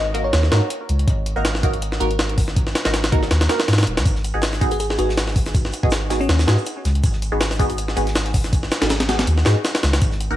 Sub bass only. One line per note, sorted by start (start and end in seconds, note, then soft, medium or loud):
0.00 0.32 G#1 medium
0.33 0.50 D#2 loud
0.52 0.61 G#2 loud
0.89 1.06 C#2 loud
1.36 1.99 G#1 medium
2.00 2.74 G#1 loud
2.85 3.30 G#1 medium
3.31 3.48 D#2 loud
3.68 3.85 G#2 medium
3.87 3.98 D#1 medium
3.97 4.05 D#2 medium
4.06 4.33 G#1 loud
4.34 4.97 G#1 medium
4.99 5.72 G#1 loud
5.83 6.28 G#1 medium
6.29 6.46 D#2 loud
6.48 6.57 G#2 loud
6.85 7.02 C#2 loud
7.32 7.95 G#1 medium
7.97 8.70 G#1 loud
8.81 9.26 G#1 medium
9.27 9.44 D#2 loud
9.46 9.55 G#2 loud
9.83 10.00 C#2 loud
10.30 10.37 G#1 medium